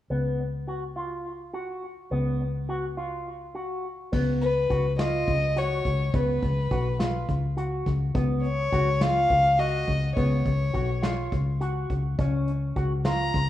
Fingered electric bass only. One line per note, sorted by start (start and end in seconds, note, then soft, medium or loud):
0.10 2.07 C#2 medium
2.11 4.09 C#2 medium
4.13 4.67 C#2 medium
4.70 5.25 C#2 medium
5.28 5.82 C#2 medium
5.85 6.12 C#2 medium
6.14 6.41 C#2 medium
6.43 6.70 C#2 medium
6.71 7.26 B1 medium
7.29 7.84 C#2 medium
7.87 8.14 C#2 medium
8.15 8.70 C#2 medium
8.73 9.27 C#2 medium
9.30 9.85 C#2 medium
9.88 10.15 C#2 medium
10.17 10.44 C#2 medium
10.46 10.73 C#2 medium
10.74 11.29 B1 medium
11.32 11.87 C#2 medium
11.90 12.17 C#2 medium
12.19 12.73 C#2 medium
12.76 13.31 C#2 medium
13.35 13.49 C#2 medium